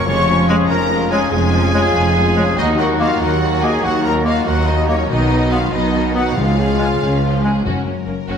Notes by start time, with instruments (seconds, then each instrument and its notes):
Already playing: harp C#5
0.06 double bass section F1, cello section F2, harp F2, trombone section F3, french horn section G#3 C#4, viola section G#3, violin section C#4 F4 C#6, trumpet section C#5
0.27 viola section F3, harp G#3, violin section C#4 F4
0.48 viola section G#3, clarinet G#3, harp C#4, violin section C#4 F4 G#5, trumpet section G#4, flute C#5
0.69 double bass section F1, cello section F2, viola section F3, violin section C#4 F4 A#5, harp G#4, trumpet section A#4
0.91 viola section G#3, violin section C#4 F4, harp C#5
1.11 viola section F3, clarinet G#3, harp C#4, violin section C#4 F4 G#5, trumpet section G#4, flute C#5
1.30 double bass section F1, harp F2, cello section F2, trombone section F3, french horn section G#3 C#4, viola section G#3, violin section C#4 F4 G#5, trumpet section G#4
1.52 viola section F3, harp G#3, violin section C#4 F4
1.74 clarinet G#3, viola section G#3, violin section C#4 F4, harp C#4, flute C#5
1.95 double bass section F1, cello section F2, viola section F3, violin section C#4 F4, harp G#4
2.16 viola section G#3, violin section C#4 F4, harp C#5
2.37 viola section F3, clarinet G#3, harp C#4, violin section C#4 F4, flute C#5
2.57 double bass section D#2, cello section D#2, trombone section D#3 F#3, harp D#3, viola section D#3 A#3, french horn section A#3 D#4, trumpet section D#4, violin section F#4 D#5
2.79 viola section F#3, harp A#3, violin section D#4 A#4 F#5, trumpet section F#4
3.00 viola section D#3 A#3, clarinet A#3, trumpet section F4, harp F#4, violin section F#4 F5, flute D#5
3.20 cello section D#2, double bass section D#2, trombone section D#3 F#3, viola section F#3, french horn section A#3 D#4, violin section D#4 A#4 F#5, trumpet section F#4, harp A#4
3.42 viola section D#3 A#3, violin section F#4, harp D#5
3.62 viola section F#3, clarinet A#3, violin section D#4 A#4 G#5, harp F#4, trumpet section G#4, flute D#5
3.82 double bass section D#2, cello section D#2, trombone section D#3 F#3, viola section D#3 A#3, french horn section A#3 D#4, harp D#4, trumpet section F#4, violin section F#4 F#5
4.04 viola section F#3, harp A#3, violin section D#4 A#4 A#5, trumpet section A#4
4.25 viola section D#3 A#3, clarinet A#3, trumpet section F4, harp F#4, violin section F#4 F5, flute D#5
4.45 cello section D#2, double bass section D#2, trombone section D#3 F#3, viola section F#3, french horn section A#3 D#4, violin section D#4 A#4 F#5, trumpet section F#4, harp A#4
4.66 viola section D#3 A#3, trumpet section D#4, violin section F#4 D#5, harp D#5
4.88 viola section F#3, clarinet A#3, trumpet section C#4, violin section D#4 A#4 C#5, harp F#4, flute D#5
5.09 double bass section B1, harp B2, cello section B2, viola section D#3 B3, trombone section D#3 F#3, french horn section B3 D#4, trumpet section D#4, violin section F#4 D#5
5.30 viola section F#3 D#4, harp B3, violin section D#4 B4
5.50 viola section D#3 B3, clarinet B3, trumpet section F4, harp F#4, violin section F#4 F5, flute F#5
5.72 double bass section B1, cello section B2, trombone section D#3 F#3, viola section F#3 D#4, french horn section B3 D#4, violin section D#4 B4 D#5, trumpet section D#4, harp B4
5.93 viola section D#3 B3, violin section F#4, harp D#5
6.15 viola section F#3 D#4, clarinet B3, violin section D#4 B4 F#5, harp F#4, trumpet section F#4, flute F#5
6.35 double bass section C#2, cello section C#2, trombone section C#3 G#3, harp C#3, timpani C#3, viola section F3 G#3, french horn section C#4 G#4, violin section F4 F5, trumpet section F4
6.58 viola section C#3 F3, violin section C#4 G#4, harp C#4
6.78 viola section F3 G#3, clarinet G#3, violin section F4, harp C#5, flute G#5
7.01 double bass section C#2, cello section C#2, viola section C#3 F3, violin section C#4 G#4, harp G#4
7.23 viola section F3 G#3, violin section F4, harp C#5
7.44 viola section C#3 F3, clarinet G#3, violin section C#4 G#4, harp C#4, flute G#5
7.65 double bass section F#1, timpani F#2, cello section F#2, harp F#2, viola section C#4, violin section F#4 A#4
7.87 double bass section F#1, cello section F#2, harp A#3, violin section C#4, viola section C#4
8.06 double bass section F#1, cello section F#2, violin section A#3, viola section C#4, harp C#4
8.28 double bass section F#1, cello section F#2, viola section C#4, violin section F#4, harp C#5